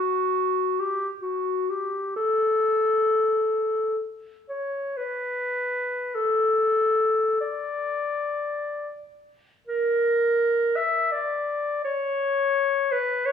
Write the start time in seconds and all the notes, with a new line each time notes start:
Already playing: F#4
0.79 G4
1.22 F#4
1.70 G4
2.16 A4
4.49 C#5
4.97 B4
6.15 A4
7.40 D5
9.67 A#4
10.76 E5
11.12 D5
11.84 C#5
12.92 B4
13.26 C#5